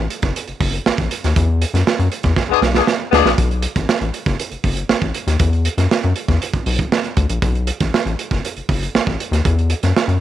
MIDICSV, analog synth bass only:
0, 0, Header, 1, 2, 480
1, 0, Start_track
1, 0, Tempo, 505476
1, 1291, Time_signature, 4, 2, 24, 8
1, 9692, End_track
2, 0, Start_track
2, 0, Title_t, "Analog synth bass"
2, 0, Program_c, 0, 38
2, 214, Note_on_c, 0, 30, 94
2, 304, Note_off_c, 0, 30, 0
2, 459, Note_on_c, 0, 30, 48
2, 506, Note_off_c, 0, 30, 0
2, 572, Note_on_c, 0, 30, 101
2, 754, Note_off_c, 0, 30, 0
2, 822, Note_on_c, 0, 33, 48
2, 868, Note_off_c, 0, 33, 0
2, 934, Note_on_c, 0, 33, 96
2, 1024, Note_off_c, 0, 33, 0
2, 1181, Note_on_c, 0, 39, 104
2, 1268, Note_off_c, 0, 39, 0
2, 1294, Note_on_c, 0, 40, 103
2, 1565, Note_off_c, 0, 40, 0
2, 1649, Note_on_c, 0, 42, 88
2, 1741, Note_off_c, 0, 42, 0
2, 1892, Note_on_c, 0, 42, 96
2, 1982, Note_off_c, 0, 42, 0
2, 2131, Note_on_c, 0, 40, 85
2, 2221, Note_off_c, 0, 40, 0
2, 2361, Note_on_c, 0, 35, 50
2, 2411, Note_off_c, 0, 35, 0
2, 2484, Note_on_c, 0, 35, 91
2, 2668, Note_off_c, 0, 35, 0
2, 2968, Note_on_c, 0, 38, 105
2, 3059, Note_off_c, 0, 38, 0
2, 3082, Note_on_c, 0, 34, 85
2, 3175, Note_off_c, 0, 34, 0
2, 3207, Note_on_c, 0, 35, 97
2, 3480, Note_off_c, 0, 35, 0
2, 3569, Note_on_c, 0, 33, 86
2, 3660, Note_off_c, 0, 33, 0
2, 3809, Note_on_c, 0, 33, 93
2, 3900, Note_off_c, 0, 33, 0
2, 4047, Note_on_c, 0, 30, 104
2, 4138, Note_off_c, 0, 30, 0
2, 4287, Note_on_c, 0, 30, 48
2, 4335, Note_off_c, 0, 30, 0
2, 4409, Note_on_c, 0, 30, 94
2, 4590, Note_off_c, 0, 30, 0
2, 4647, Note_on_c, 0, 33, 45
2, 4695, Note_off_c, 0, 33, 0
2, 4765, Note_on_c, 0, 33, 87
2, 4857, Note_off_c, 0, 33, 0
2, 5005, Note_on_c, 0, 39, 103
2, 5097, Note_off_c, 0, 39, 0
2, 5125, Note_on_c, 0, 40, 91
2, 5399, Note_off_c, 0, 40, 0
2, 5485, Note_on_c, 0, 42, 97
2, 5577, Note_off_c, 0, 42, 0
2, 5737, Note_on_c, 0, 42, 97
2, 5825, Note_off_c, 0, 42, 0
2, 5968, Note_on_c, 0, 40, 82
2, 6059, Note_off_c, 0, 40, 0
2, 6208, Note_on_c, 0, 35, 47
2, 6256, Note_off_c, 0, 35, 0
2, 6327, Note_on_c, 0, 35, 92
2, 6510, Note_off_c, 0, 35, 0
2, 6806, Note_on_c, 0, 38, 97
2, 6898, Note_off_c, 0, 38, 0
2, 6928, Note_on_c, 0, 34, 89
2, 7020, Note_off_c, 0, 34, 0
2, 7047, Note_on_c, 0, 35, 98
2, 7321, Note_off_c, 0, 35, 0
2, 7413, Note_on_c, 0, 33, 93
2, 7503, Note_off_c, 0, 33, 0
2, 7650, Note_on_c, 0, 33, 97
2, 7741, Note_off_c, 0, 33, 0
2, 7894, Note_on_c, 0, 30, 83
2, 7984, Note_off_c, 0, 30, 0
2, 8135, Note_on_c, 0, 30, 51
2, 8182, Note_off_c, 0, 30, 0
2, 8251, Note_on_c, 0, 30, 91
2, 8433, Note_off_c, 0, 30, 0
2, 8493, Note_on_c, 0, 33, 50
2, 8541, Note_off_c, 0, 33, 0
2, 8612, Note_on_c, 0, 33, 97
2, 8703, Note_off_c, 0, 33, 0
2, 8846, Note_on_c, 0, 39, 104
2, 8939, Note_off_c, 0, 39, 0
2, 8978, Note_on_c, 0, 40, 94
2, 9249, Note_off_c, 0, 40, 0
2, 9338, Note_on_c, 0, 42, 94
2, 9427, Note_off_c, 0, 42, 0
2, 9570, Note_on_c, 0, 42, 95
2, 9663, Note_off_c, 0, 42, 0
2, 9692, End_track
0, 0, End_of_file